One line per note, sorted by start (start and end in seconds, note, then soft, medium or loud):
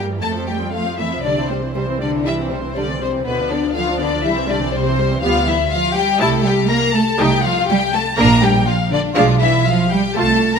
0.00 0.21 G2 medium
0.09 0.22 E3 medium
0.09 0.22 G3 medium
0.21 1.25 F2 medium
0.21 0.34 A3 medium
0.21 0.48 A3 medium
0.21 0.47 A4 medium
0.21 0.30 A5 loud
0.35 0.48 F3 medium
0.35 0.48 C4 medium
0.47 0.74 G3 medium
0.47 0.61 A3 medium
0.47 0.55 G4 medium
0.47 0.73 G5 medium
0.61 0.74 F3 medium
0.61 0.74 C4 medium
0.72 0.83 F3 medium
0.72 0.86 A3 medium
0.72 0.98 F4 medium
0.72 0.98 F5 loud
0.85 0.99 F3 medium
0.85 0.99 C4 medium
0.97 1.08 E3 medium
0.97 1.11 A3 medium
0.97 1.23 E4 medium
0.97 1.23 E5 loud
1.11 1.24 F3 medium
1.11 1.24 C4 medium
1.24 3.22 C2 medium
1.24 1.32 D3 medium
1.24 1.36 G3 medium
1.24 1.49 D4 medium
1.24 1.49 D5 loud
1.37 1.50 E3 medium
1.37 1.50 C4 medium
1.49 1.58 C3 medium
1.49 1.63 G3 medium
1.49 1.58 C4 medium
1.49 1.74 C5 medium
1.62 1.75 E3 medium
1.62 1.75 C4 medium
1.74 1.84 C3 medium
1.74 1.87 G3 medium
1.74 1.82 C4 medium
1.74 2.00 C5 medium
1.88 2.00 E3 medium
1.88 2.01 C4 medium
2.00 2.25 D3 medium
2.00 2.13 G3 medium
2.00 2.26 D4 medium
2.00 2.09 D5 medium
2.13 2.26 E3 medium
2.13 2.26 C4 medium
2.25 2.51 E3 medium
2.25 2.38 G3 medium
2.25 2.51 E4 medium
2.25 2.34 E5 loud
2.39 2.51 E3 medium
2.39 2.51 C4 medium
2.49 2.59 C3 medium
2.49 2.63 G3 medium
2.49 2.57 C4 medium
2.49 2.76 C5 medium
2.63 2.76 E3 medium
2.63 2.76 C4 medium
2.76 3.01 D3 medium
2.76 2.88 G3 medium
2.76 2.84 D4 medium
2.76 3.02 D5 loud
2.89 3.02 E3 medium
2.89 3.02 C4 medium
3.01 3.26 C3 medium
3.01 3.14 G3 medium
3.01 3.25 C4 medium
3.01 3.10 C5 medium
3.14 3.26 E3 medium
3.14 3.26 C4 medium
3.25 4.23 D2 medium
3.25 3.35 B2 medium
3.25 3.38 D3 medium
3.25 3.50 B3 medium
3.25 3.38 B3 medium
3.25 3.50 B4 loud
3.40 3.51 F3 medium
3.40 3.51 D4 medium
3.50 3.59 D3 medium
3.50 3.64 D3 medium
3.50 3.64 B3 medium
3.50 3.76 D4 medium
3.50 3.75 D5 loud
3.64 3.76 F3 medium
3.64 3.76 D4 medium
3.75 3.87 D3 medium
3.75 3.84 F3 medium
3.75 3.87 B3 medium
3.75 4.00 F4 medium
3.75 3.99 F5 loud
3.89 4.01 F3 medium
3.89 4.01 D4 medium
4.00 4.24 D3 medium
4.00 4.13 D3 medium
4.00 4.13 B3 medium
4.00 4.24 D4 medium
4.00 4.24 D5 loud
4.12 4.25 F3 medium
4.12 4.25 D4 medium
4.24 5.23 C2 medium
4.24 4.33 E3 medium
4.24 4.36 G3 medium
4.24 4.48 E4 medium
4.24 4.49 E5 loud
4.36 4.49 E3 medium
4.36 4.49 C4 medium
4.49 4.57 D3 medium
4.49 4.61 G3 medium
4.49 4.73 D4 medium
4.49 4.74 D5 loud
4.61 4.73 E3 medium
4.61 4.73 C4 medium
4.73 5.22 C3 medium
4.73 4.85 G3 medium
4.73 5.22 C4 medium
4.73 5.23 C5 loud
4.86 4.99 E3 medium
4.86 4.99 C4 medium
4.99 5.11 G3 medium
5.11 5.23 E3 medium
5.11 5.23 C4 medium
5.22 5.64 D2 medium
5.22 5.47 F3 loud
5.22 5.46 G3 medium
5.22 5.46 B3 medium
5.22 5.47 F4 loud
5.22 5.47 F5 loud
5.47 5.55 E3 medium
5.47 5.71 E4 loud
5.47 5.72 E5 loud
5.71 5.96 F3 loud
5.71 5.95 F4 loud
5.71 5.96 F5 loud
5.95 6.20 G3 loud
5.95 6.20 G4 loud
5.95 6.20 G5 loud
6.20 6.62 C2 loud
6.20 6.43 G3 medium
6.20 6.45 A3 loud
6.20 6.43 E4 medium
6.20 6.44 A4 loud
6.20 6.28 A5 loud
6.44 6.69 G3 loud
6.44 6.69 G4 loud
6.44 6.54 G5 loud
6.69 6.94 A#3 loud
6.69 6.94 A#4 loud
6.69 6.94 A#5 loud
6.94 7.02 A3 medium
6.94 7.19 A4 medium
6.94 7.19 A5 loud
7.18 7.61 C2 loud
7.18 7.28 G3 loud
7.18 7.42 A3 medium
7.18 7.42 D#4 medium
7.18 7.44 G4 loud
7.18 7.45 G5 loud
7.44 7.52 F3 loud
7.44 7.68 F4 loud
7.44 7.69 F5 loud
7.69 7.77 G3 loud
7.69 7.94 G4 loud
7.69 7.94 G5 loud
7.93 8.02 A3 loud
7.93 8.01 A4 loud
7.93 8.19 A5 loud
8.17 8.59 A#1 loud
8.17 8.41 A#3 medium
8.17 8.42 A#3 loud
8.17 8.41 D4 medium
8.17 8.42 A#4 loud
8.17 8.42 A#5 loud
8.42 8.67 G3 loud
8.42 8.67 G4 loud
8.42 8.68 G5 loud
8.66 8.91 F3 medium
8.66 8.74 F4 medium
8.66 8.92 F5 loud
8.91 8.99 D3 loud
8.91 9.16 D4 loud
8.91 9.00 D5 loud
9.15 9.58 B1 loud
9.15 9.41 F3 loud
9.15 9.40 G#3 medium
9.15 9.40 D4 medium
9.15 9.40 F4 loud
9.15 9.23 F5 loud
9.40 9.66 E3 loud
9.40 9.65 E4 loud
9.40 9.66 E5 loud
9.65 9.91 F3 loud
9.65 9.91 F4 loud
9.65 9.92 F5 loud
9.90 10.00 G3 loud
9.90 10.15 G4 loud
9.90 10.17 G5 loud
10.15 10.59 C2 loud
10.15 10.40 A3 medium
10.15 10.55 A3 loud
10.15 10.40 F4 medium
10.15 10.55 A4 loud
10.15 10.55 A5 loud
10.55 10.59 A#4 loud
10.55 10.59 A#5 loud